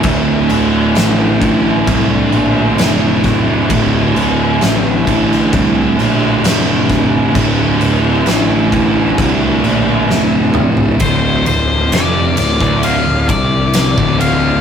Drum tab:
CC |x-x-x-x-x-x-x-x-|x-x-x-x-x-x-x-x-|x-x-x-x-x-x-----|----------------|
RD |----------------|----------------|----------------|x-x-x-x-x-x-x-x-|
SD |----o-------o-o-|----o--o----o-o-|----o-------o---|----o-oo----o---|
T2 |----------------|----------------|--------------o-|----------------|
FT |----------------|----------------|---------------o|----------------|
BD |o-----o-o-----o-|o-----o-o-----o-|o-----o-o-------|o------o--o--o--|